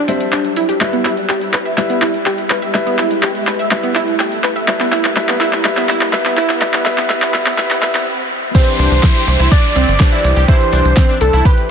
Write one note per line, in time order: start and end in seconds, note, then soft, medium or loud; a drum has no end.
0.00 riser medium
0.08 0.78 G3 medium
0.08 0.11 C4 medium
0.08 0.78 D4 medium
0.08 0.78 C5 medium
0.08 0.78 E5 medium
0.08 open hi-hat loud
0.21 closed hi-hat soft
0.32 0.38 D4 medium
0.32 clap medium
0.32 closed hi-hat medium
0.45 closed hi-hat soft
0.56 0.65 E4 medium
0.56 open hi-hat loud
0.69 0.77 G4 medium
0.69 open hi-hat medium
0.81 1.75 G3 medium
0.81 1.75 E4 medium
0.81 1.75 B4 medium
0.81 1.75 E5 medium
0.81 clap medium
0.81 closed hi-hat medium
0.93 0.96 B3 medium
0.93 closed hi-hat soft
1.05 1.13 E4 medium
1.05 clap medium
1.05 open hi-hat loud
1.17 closed hi-hat soft
1.29 1.34 G4 medium
1.29 clap medium
1.29 closed hi-hat medium
1.41 closed hi-hat soft
1.53 1.56 B4 medium
1.53 clap medium
1.53 open hi-hat loud
1.65 1.71 E5 medium
1.65 closed hi-hat soft
1.77 2.72 G3 medium
1.77 2.72 E4 medium
1.77 2.72 B4 medium
1.77 2.72 E5 medium
1.77 clap medium
1.77 closed hi-hat medium
1.90 1.93 B3 medium
1.90 closed hi-hat soft
2.02 2.10 E4 medium
2.02 clap medium
2.02 open hi-hat loud
2.14 closed hi-hat soft
2.26 2.31 G4 medium
2.26 clap medium
2.26 closed hi-hat medium
2.38 closed hi-hat soft
2.50 2.53 B4 medium
2.50 clap medium
2.50 open hi-hat loud
2.62 2.68 E5 medium
2.62 closed hi-hat soft
2.74 3.69 G3 medium
2.74 3.69 E4 medium
2.74 3.69 B4 medium
2.74 3.69 E5 medium
2.74 clap medium
2.74 closed hi-hat medium
2.87 2.90 B3 medium
2.87 closed hi-hat soft
2.98 3.06 E4 medium
2.98 clap medium
2.98 open hi-hat loud
3.11 closed hi-hat soft
3.23 3.28 G4 medium
3.23 clap medium
3.23 closed hi-hat medium
3.35 closed hi-hat soft
3.47 3.50 B4 medium
3.47 clap medium
3.47 open hi-hat loud
3.59 3.64 E5 medium
3.59 closed hi-hat soft
3.71 4.66 G3 medium
3.71 4.66 E4 medium
3.71 4.66 B4 medium
3.71 4.66 E5 loud
3.71 clap medium
3.71 closed hi-hat medium
3.83 3.86 B3 medium
3.83 closed hi-hat soft
3.95 4.03 E4 loud
3.95 clap medium
3.95 open hi-hat loud
4.08 closed hi-hat soft
4.19 4.25 G4 medium
4.19 clap medium
4.19 closed hi-hat medium
4.32 closed hi-hat soft
4.44 4.47 B4 medium
4.44 clap medium
4.44 open hi-hat loud
4.56 4.61 E5 medium
4.56 closed hi-hat soft
4.68 5.14 G3 medium
4.68 5.14 E4 medium
4.68 5.14 B4 medium
4.68 5.14 E5 loud
4.68 clap medium
4.68 closed hi-hat loud
4.80 4.83 B3 medium
4.80 clap medium
4.80 closed hi-hat soft
4.92 5.00 E4 loud
4.92 clap medium
4.92 open hi-hat loud
5.04 clap medium
5.04 closed hi-hat soft
5.16 5.63 G3 medium
5.16 5.63 E4 medium
5.16 5.63 B4 medium
5.16 5.63 E5 loud
5.16 clap medium
5.16 closed hi-hat medium
5.28 5.32 B3 medium
5.28 clap medium
5.28 closed hi-hat soft
5.40 5.48 E4 loud
5.40 clap loud
5.40 open hi-hat loud
5.53 clap medium
5.53 closed hi-hat soft
5.65 6.11 G3 medium
5.65 6.11 E4 medium
5.65 6.11 B4 medium
5.65 6.11 E5 loud
5.65 clap medium
5.65 closed hi-hat medium
5.77 5.80 B3 medium
5.77 clap medium
5.77 closed hi-hat soft
5.89 5.97 E4 loud
5.89 clap loud
5.89 open hi-hat loud
6.01 clap medium
6.01 closed hi-hat soft
6.13 6.59 G3 medium
6.13 6.59 E4 medium
6.13 6.59 B4 medium
6.13 6.59 E5 loud
6.13 clap loud
6.13 closed hi-hat medium
6.25 6.28 B3 medium
6.25 clap medium
6.25 closed hi-hat soft
6.37 6.45 E4 loud
6.37 clap loud
6.37 open hi-hat loud
6.49 clap medium
6.49 closed hi-hat soft
6.61 6.84 G3 medium
6.61 6.84 E4 medium
6.61 6.84 B4 medium
6.61 6.84 E5 loud
6.61 clap loud
6.61 closed hi-hat loud
6.73 6.77 B3 medium
6.73 clap medium
6.73 closed hi-hat soft
6.85 7.08 G3 medium
6.85 7.08 E4 medium
6.85 7.08 B4 medium
6.85 7.08 E5 loud
6.85 clap loud
6.85 open hi-hat loud
6.98 7.01 B3 medium
6.98 clap medium
6.98 closed hi-hat soft
7.10 7.32 G3 loud
7.10 7.32 E4 medium
7.10 7.32 B4 medium
7.10 7.32 E5 loud
7.10 clap loud
7.10 closed hi-hat loud
7.22 7.25 B3 medium
7.22 clap medium
7.22 closed hi-hat soft
7.34 7.56 G3 medium
7.34 7.56 E4 medium
7.34 7.56 B4 medium
7.34 7.56 E5 loud
7.34 clap loud
7.34 open hi-hat loud
7.46 7.49 B3 medium
7.46 clap medium
7.46 closed hi-hat soft
7.58 7.80 G3 loud
7.58 7.80 E4 medium
7.58 7.80 B4 medium
7.58 7.80 E5 loud
7.58 clap loud
7.58 closed hi-hat loud
7.70 7.73 B3 medium
7.70 clap loud
7.70 closed hi-hat soft
7.82 8.04 G3 medium
7.82 8.04 E4 medium
7.82 8.04 B4 medium
7.82 8.04 E5 loud
7.82 clap loud
7.82 open hi-hat loud
7.94 7.98 B3 medium
7.94 clap loud
7.94 closed hi-hat soft
8.55 9.97 E3 medium
8.55 8.60 C4 loud
8.55 9.97 D4 medium
8.55 9.97 G4 medium
8.55 9.97 C5 loud
8.55 9.48 C5 loud
8.55 kick loud
8.55 closed hi-hat loud
8.55 tambourine medium
8.55 crash loud
8.55 downlifter medium
8.66 closed hi-hat soft
8.66 tambourine soft
8.79 8.88 C2 loud
8.79 8.87 D4 medium
8.79 open hi-hat loud
8.79 tambourine medium
8.91 9.00 C2 medium
8.91 closed hi-hat soft
8.91 tambourine soft
9.03 9.06 E4 loud
9.03 kick loud
9.03 snare loud
9.03 closed hi-hat medium
9.03 tambourine soft
9.15 9.21 G4 medium
9.15 closed hi-hat soft
9.15 tambourine soft
9.27 9.37 C2 loud
9.27 open hi-hat loud
9.27 tambourine loud
9.40 9.49 C2 medium
9.40 9.45 E4 medium
9.40 closed hi-hat soft
9.40 tambourine soft
9.51 9.57 D4 loud
9.51 10.44 D5 loud
9.51 kick loud
9.51 closed hi-hat medium
9.51 tambourine medium
9.64 closed hi-hat soft
9.64 tambourine soft
9.76 9.85 C2 medium
9.76 9.84 C4 medium
9.76 open hi-hat loud
9.76 tambourine medium
9.88 9.97 G1 medium
9.88 closed hi-hat soft
9.88 tambourine soft
10.00 10.45 E3 medium
10.00 10.03 D4 loud
10.00 10.45 D4 medium
10.00 10.45 G4 medium
10.00 10.45 C5 medium
10.00 kick loud
10.00 snare loud
10.00 closed hi-hat loud
10.00 tambourine soft
10.12 10.15 E4 loud
10.12 closed hi-hat soft
10.12 tambourine soft
10.24 10.34 C2 loud
10.24 open hi-hat loud
10.24 tambourine medium
10.36 10.46 C2 medium
10.36 10.42 G4 medium
10.36 closed hi-hat soft
10.36 tambourine soft
10.48 11.66 E3 medium
10.48 11.66 D4 medium
10.48 10.54 E4 loud
10.48 11.66 G4 medium
10.48 11.17 C5 loud
10.48 11.66 E5 loud
10.48 kick loud
10.48 closed hi-hat medium
10.48 tambourine medium
10.61 closed hi-hat soft
10.61 tambourine soft
10.72 10.82 C2 medium
10.72 10.81 D4 medium
10.72 open hi-hat loud
10.72 tambourine loud
10.85 10.94 C2 medium
10.85 closed hi-hat soft
10.85 tambourine soft
10.97 11.00 C4 loud
10.97 kick loud
10.97 snare loud
10.97 closed hi-hat medium
10.97 tambourine medium
11.09 11.12 D4 medium
11.09 closed hi-hat soft
11.09 tambourine soft
11.21 11.30 C2 medium
11.21 11.44 A4 medium
11.21 11.47 A4 medium
11.21 open hi-hat loud
11.21 tambourine medium
11.33 11.42 C2 medium
11.33 11.38 E4 medium
11.33 closed hi-hat soft
11.33 tambourine soft
11.45 11.48 G4 medium
11.45 11.69 B4 loud
11.45 11.68 B4 medium
11.45 kick loud
11.45 closed hi-hat medium
11.45 tambourine medium
11.57 closed hi-hat soft
11.57 tambourine soft